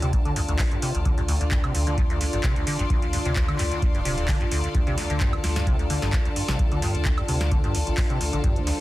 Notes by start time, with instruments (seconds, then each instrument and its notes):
Already playing: sub bass D2, analog synth pad D3 D4 F4 A4, string section F4 A4 D5 A5
0.02 acid bass C3, closed hi-hat
0.13 acid bass D2, kick, closed hi-hat
0.25 acid bass D3, closed hi-hat
0.36 sub bass D2, acid bass G2, open hi-hat
0.48 sub bass A1, acid bass D2, closed hi-hat
0.59 kick, clap, open hi-hat
0.71 acid bass G2, closed hi-hat
0.82 acid bass C3, open hi-hat
0.95 sub bass A1, acid bass D2, closed hi-hat
1.05 sub bass D2, acid bass D3, analog synth pad D5, kick, closed hi-hat
1.18 acid bass G2, closed hi-hat
1.28 acid bass D2, open hi-hat
1.41 sub bass D2, acid bass D2, closed hi-hat
1.51 acid bass G2, kick, clap, closed hi-hat
1.61 acid bass C3, string section C6, closed hi-hat, high woodblock
1.75 sub bass D2, acid bass D2, open hi-hat
1.87 acid bass D3, closed hi-hat
1.98 acid bass G2, kick, closed hi-hat
2.10 acid bass D2, closed hi-hat
2.21 sub bass D2, acid bass D2, open hi-hat
2.33 sub bass A1, acid bass G2, closed hi-hat
2.43 acid bass C3, kick, clap, closed hi-hat
2.56 acid bass D2, closed hi-hat
2.67 acid bass D3, open hi-hat
2.79 sub bass A1, acid bass G2, closed hi-hat
2.90 sub bass D2, acid bass D2, kick, closed hi-hat
3.02 acid bass D2, closed hi-hat
3.13 acid bass G2, open hi-hat
3.25 sub bass D2, acid bass C3, closed hi-hat
3.36 acid bass D2, kick, clap, closed hi-hat
3.48 acid bass D3, closed hi-hat, high woodblock
3.59 sub bass D2, acid bass G2, clap, open hi-hat
3.71 acid bass D2, closed hi-hat
3.82 acid bass D2, kick, closed hi-hat
3.94 sub bass D1, acid bass G2, closed hi-hat
4.05 acid bass C3, open hi-hat
4.18 acid bass D2, closed hi-hat
4.28 acid bass D3, kick, clap, open hi-hat
4.41 sub bass A1, acid bass G2, closed hi-hat
4.52 acid bass D2, open hi-hat
4.64 acid bass D2, closed hi-hat
4.75 sub bass D2, acid bass G2, analog synth pad A4, kick, closed hi-hat
4.87 acid bass C3, closed hi-hat
4.98 acid bass D2, snare, open hi-hat
5.10 sub bass D2, acid bass D3, closed hi-hat
5.20 acid bass G2, kick, clap, closed hi-hat
5.31 acid bass D2, string section A5, closed hi-hat, high woodblock
5.44 sub bass D2, acid bass D2, snare, open hi-hat
5.56 acid bass G2, snare, closed hi-hat
5.67 acid bass C3, kick, closed hi-hat
5.79 acid bass D2, closed hi-hat
5.90 sub bass D2, acid bass D3, open hi-hat
6.02 sub bass A1, acid bass G2, snare, closed hi-hat
6.13 acid bass D2, kick, clap, closed hi-hat
6.25 acid bass D2, closed hi-hat
6.36 acid bass G2, open hi-hat
6.48 sub bass A1, acid bass C3, snare
6.59 sub bass D2, acid bass D2, kick, closed hi-hat
6.72 acid bass D3, closed hi-hat
6.82 acid bass G2, snare, open hi-hat
6.95 sub bass D2, acid bass D2, closed hi-hat
7.05 acid bass D2, kick, clap, closed hi-hat
7.18 acid bass G2, closed hi-hat, high woodblock
7.28 sub bass D2, acid bass C3, open hi-hat
7.41 acid bass D2, snare, closed hi-hat
7.52 acid bass D3, kick, closed hi-hat
7.64 acid bass G2, closed hi-hat
7.75 sub bass D2, acid bass D2, open hi-hat
7.87 sub bass A1, acid bass D2, closed hi-hat
7.97 acid bass G2, kick, clap, open hi-hat
8.10 acid bass C3, closed hi-hat
8.21 acid bass D2, open hi-hat
8.33 sub bass A1, acid bass D3, closed hi-hat
8.44 sub bass D2, acid bass G2, analog synth pad C5, kick, closed hi-hat
8.56 acid bass D2, closed hi-hat
8.67 acid bass D2, snare, open hi-hat